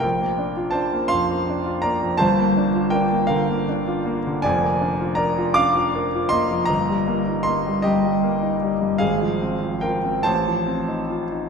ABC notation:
X:1
M:6/8
L:1/16
Q:3/8=53
K:Gm
V:1 name="Grand piano"
[Bg]4 [ca]2 [fc']4 [db]2 | [ca]4 [Bg]2 [Bf]2 z4 | [K:Eb] [da]4 [db]2 [fd']4 [ec']2 | [eb]4 [ec']2 [Ge]6 |
[Af]4 [Bg]2 [c=a]6 |]
V:2 name="Grand piano"
B,,, B, D F D B, F,, B, D F B, F,, | [G,,,G,,] B, D F D B, D, B, D F B, D, | [K:Eb] [F,,,F,,] B, D F B F D F B F B, F, | G,,, G, B, E B, G, G,, G, B, E G, G,, |
A,,, F, C F, F C =A,,, F, C E F E |]